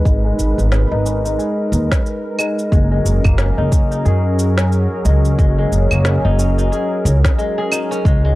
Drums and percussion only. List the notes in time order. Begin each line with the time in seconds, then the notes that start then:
0.05 kick, shaker
0.39 shaker
0.59 shaker
0.72 snare, shaker
1.06 shaker
1.26 shaker
1.40 shaker
1.73 shaker
1.92 kick, snare, shaker
2.06 shaker
2.39 claves, shaker
2.59 shaker
2.72 kick, shaker
3.06 shaker
3.24 kick, claves, shaker
3.38 snare, shaker
3.72 kick, shaker
3.92 shaker
4.06 shaker
4.39 shaker
4.58 snare, shaker
4.72 shaker
5.05 shaker
5.25 shaker
5.39 kick, shaker
5.72 shaker
5.91 claves, shaker
6.05 snare, shaker
6.39 shaker
6.59 shaker
6.73 shaker
7.06 shaker
7.25 kick, snare, shaker
7.39 shaker
7.72 claves, shaker
7.92 shaker
8.05 kick, shaker